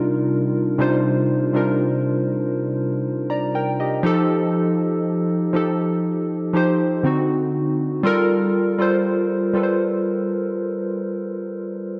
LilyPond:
\new Staff \with { instrumentName = "Synth keys" } { \time 4/4 \key c \dorian \tempo 4 = 60 << { r2. r16 <d'' bes''>16 <bes' g''>16 <g' ees''>16~ | <g' ees''>16 r2. r8. | r1 | } \\ { <c g d' ees' f' bes'>8 r16 <c g d' ees' f' c''>8 r16 <c g d' ees' f' bes'>4. r4 | <f ees' g' a'>4~ <f ees' g' a'>16 r16 <f ees' g' a'>8. r16 <f ees' g' c''>8 <d c' ees' fis'>8. r16 | <g f' a' bes'>8 r16 <g f' a' c''>8 r16 <g f' a' b' c''>4. r4 | } >> }